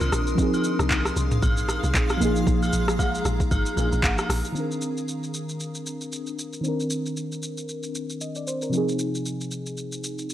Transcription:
Already playing: D#3 C4 D4 F4 A#4 C6 D#6
0.01 C2, high agogo, shaker
0.12 A#1, cross-stick, shaker
0.27 shaker
0.35 F3 C4 G#4 F5, kick, shaker
0.40 D#4 G#4
0.54 high agogo, shaker
0.64 shaker
0.79 C2, cross-stick, shaker
0.90 kick, clap, high agogo, shaker
1.05 cross-stick, shaker
1.16 C2, shaker
1.31 mid tom, shaker
1.42 A#1, kick, high agogo, shaker
1.57 shaker
1.68 cross-stick, high agogo, shaker
1.84 C2, shaker
1.94 A#1, kick, clap, shaker
2.09 cross-stick, high agogo, shaker
2.17 A#1 F3 A#3 A#5
2.21 D#4 G#4, shaker
2.36 shaker
2.47 A#1, kick, shaker
2.63 high agogo, shaker
2.73 A#1, shaker
2.88 cross-stick, shaker
2.99 kick, high agogo, low woodblock, shaker
3.15 shaker
3.25 A#1, cross-stick, shaker
3.40 kick, shaker
3.51 G#1, kick, high agogo, shaker
3.66 shaker
3.76 A#1 F3 A#3 D4 G#4, high agogo, shaker
3.85 D#4
3.92 A#1, shaker
4.03 G#1, kick, clap, low woodblock, shaker
4.18 cross-stick, high agogo, shaker
4.29 A#1, cross-stick, open hi-hat, shaker
4.44 shaker
4.52 D#3 C4, shaker
4.57 D4 A#4
4.71 shaker
4.82 shaker
4.97 shaker
5.08 shaker
5.23 shaker
5.34 shaker
5.49 shaker
5.60 shaker
5.75 shaker
5.86 shaker
6.01 shaker
6.12 shaker
6.27 shaker
6.39 shaker
6.53 shaker
6.61 D#3 C4, shaker
6.66 D4 A#4
6.80 shaker
6.90 shaker
7.06 shaker
7.17 shaker
7.32 shaker
7.43 shaker
7.58 shaker
7.69 shaker
7.83 shaker
7.95 shaker
8.10 shaker
8.21 D#5, shaker
8.35 D5, shaker
8.47 C5, shaker
8.62 A#4, shaker
8.70 C3 F3 C4, shaker
8.75 D#4 G#4
8.89 shaker
8.99 shaker
9.15 shaker
9.26 shaker
9.41 shaker
9.51 shaker
9.66 shaker
9.77 shaker
9.92 shaker
10.04 shaker
10.19 shaker
10.30 shaker

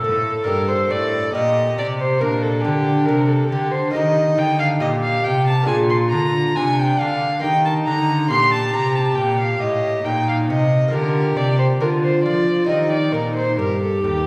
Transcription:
Already playing: D4 F#4 A4
0.01 A2 A4
0.44 A#3 D4 G4 A#4
0.48 G2
0.68 C5
0.91 A2 D5
1.33 A#2 G4 D#5
1.78 C3 D5
2.00 C5
2.21 A#2 D4 A#4
2.42 A4
2.62 D3 G4
3.05 C3 A#4
3.28 A4
3.49 D3 G4
3.71 C5
3.91 D#3 A#3 D#4 G4 D#5
3.95 D#3 D#4
4.38 D3 G5
4.59 F5
4.80 A#2 G4 D#5
5.03 F5
5.24 C3 G5
5.47 A5
5.63 A#3 D4 G#4
5.67 A#2 F4 G#5
5.90 C6
6.10 D3 A#5
6.55 C3 D4 G#5
6.79 G5
7.00 D3 F5
7.40 D#3 A#3 D#4 G4 G5
7.44 D#3
7.65 A5
7.86 D3 A#5
8.29 A#2 G4 C6
8.53 A5
8.73 C3 A#5
8.95 A5
9.15 A#2 G5
9.39 F5
9.60 A2 D#5
10.04 A#2 D#4 G5
10.29 F5
10.48 C3 D#5
10.88 D3 A#3 F4 G4 A#4
10.93 D3 A#4
11.36 C3 D5
11.59 C5
11.80 D3 F4 A#4
12.03 C5
12.23 F3 D5
12.64 C4 D#4 G4 D#5
12.69 D#3 D#4
12.92 D5
13.13 A#2 A#4
13.35 C5
13.58 G2 G4 A#4
13.82 A4
14.04 D#2 G4

